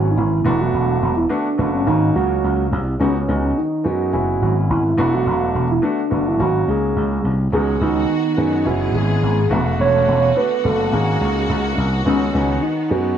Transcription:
Already playing: G#1 B3 C#4 E4 F#4 G#4
0.11 D#4
0.17 G#1 E4
0.44 E1 A3 B3 D4 F#4
0.61 F#4
0.74 E1
1.02 E1
1.17 E4
1.29 A3 B3 D4 F#4
1.58 F#1 A3 B3 D4 F#4
1.74 C#4
1.86 G#1 A#3 C#4 D#4 F#4
2.15 C#2 F#4
2.44 C#2
2.72 C2
3.00 C#2 G#3 B3 C#4 D#4 F#4
3.28 C#2 G#3 B3 D#4 F#4
3.58 D#4
3.84 F#2 G#3 B3 D#4 F#4
4.12 F#1 G#3 B3 C#4 E4 F#4
4.42 G#1 F#4
4.70 G#1 E4
4.97 E1 A3 B3 D4 F#4
5.14 F#4
5.26 E1
5.55 E1
5.71 E4
5.82 A3 B3 D4 F#4
6.10 F#1 A3 B3 D4 F#4
6.28 E4
6.39 G#1 A#3 C#4 D#4 F#4
6.68 C#2 G#4
6.96 C#2
7.24 C2
7.52 C#2 D#3 G#3 B3 D#4 F#4 G#4
7.81 C#2 G#3 B3 D#4 F#4
8.37 F#2 G#3 B3 D#4 F#4
8.65 F#1 E3 G#3 B3 C#4 E4 F#4 G#4
8.94 G#1 G#4
9.23 G#1
9.50 E1 D3 A3 B3 D4 F#4
9.79 E1 C#5
10.08 E1
10.36 A3 B3 D4 F#4 B4
10.63 F#1 A3 B3 D4 F#4 A4
10.92 G#1 C#3 A#3 C#4 D#4 F#4 G#4
11.21 C#2
11.49 C#2
11.78 C2
12.05 C#2 D#3 G#3 B3 C#4 D#4 F#4
12.33 C#2 G#3 B3 D#4 F#4
12.62 D#4
12.90 F#2 G#3 B3 D#4 F#4

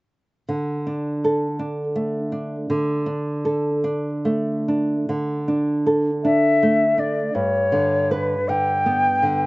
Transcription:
0.49 D3
0.87 D4
1.24 A4
1.59 D4
1.96 A3
2.32 D4
2.70 D3
3.06 D4
3.45 A4
3.84 D4
4.25 A3
4.68 D4
5.09 D3
5.48 D4
5.87 A4
6.24 D4 E5
6.63 A3
6.98 D4 D5
7.34 G2 C#5
7.72 D3
8.11 B4
8.48 D3 G5
8.86 B3
9.23 D3

